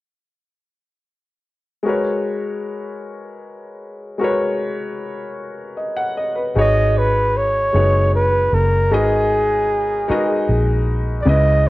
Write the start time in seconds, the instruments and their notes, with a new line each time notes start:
1.83 grand piano G#3 F#4 A#4
1.88 grand piano B4 C#5
4.18 grand piano G#3 F#4 A#4
4.23 grand piano B4 C#5
5.77 grand piano D#5
5.97 grand piano F#5
6.17 grand piano D#5
6.36 grand piano B4
6.55 fingered electric bass G#1, grand piano G#3 D#4 F#4 G#4 B4 C#5
6.61 flugelhorn D#5
6.98 flugelhorn B4
7.37 flugelhorn C#5
7.73 fingered electric bass F#1, grand piano G#3 D#4 F#4 G#4 B4 C#5
8.15 flugelhorn B4
8.53 fingered electric bass F#1, flugelhorn A#4
8.91 fingered electric bass G#1, grand piano G#3 D#4 F#4 A#4 B4 D#5, flugelhorn G#4
10.08 grand piano G#3 D#4 F#4 A#4 B4 D#5, muted fingered electric bass stroke
10.49 fingered electric bass A#1
11.22 grand piano C#3, flugelhorn D5
11.26 fingered electric bass C#2, grand piano G#3 E4 B4 D#5, flugelhorn D#5